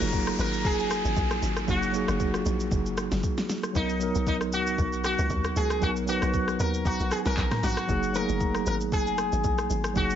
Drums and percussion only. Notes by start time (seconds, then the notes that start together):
0.01 shaker
0.13 kick, shaker
0.27 cross-stick, shaker
0.39 shaker
0.53 shaker
0.65 kick, shaker
0.79 shaker
0.91 cross-stick, shaker
1.05 shaker
1.17 kick, shaker
1.31 cross-stick, shaker
1.43 shaker
1.57 cross-stick, shaker
1.68 kick, shaker
1.83 shaker
1.94 shaker
2.08 cross-stick, shaker
2.20 kick, shaker
2.34 cross-stick, shaker
2.46 shaker
2.60 shaker
2.72 kick, shaker
2.86 shaker
2.98 cross-stick, shaker
3.12 snare, shaker
3.23 kick, shaker
3.38 snare, shaker
3.49 snare, shaker
3.63 cross-stick, shaker
3.75 kick, shaker
3.89 shaker
4.01 shaker
4.15 shaker
4.27 kick, shaker
4.41 cross-stick, shaker
4.53 shaker
4.67 shaker
4.78 kick, shaker
4.93 shaker
5.04 cross-stick, shaker
5.18 shaker
5.30 kick, shaker
5.44 cross-stick, shaker
5.56 shaker
5.70 cross-stick, shaker
5.82 kick, shaker
5.96 shaker
6.08 shaker
6.22 cross-stick, shaker
6.34 kick, shaker
6.48 cross-stick, shaker
6.60 shaker
6.74 shaker
6.85 kick, shaker
7.00 shaker
7.11 cross-stick, shaker
7.26 snare, shaker
7.37 kick, clap, shaker
7.51 cross-stick, snare, mid tom, shaker
7.63 snare, open hi-hat, shaker
7.77 cross-stick, shaker
7.89 kick, shaker
8.03 shaker
8.15 shaker
8.29 shaker
8.41 kick, shaker
8.55 cross-stick, shaker
8.66 shaker
8.81 shaker
8.92 kick, shaker
9.07 shaker
9.18 cross-stick, shaker
9.32 shaker
9.44 kick, shaker
9.58 cross-stick, shaker
9.70 shaker
9.84 cross-stick, shaker
9.96 kick, shaker
10.10 shaker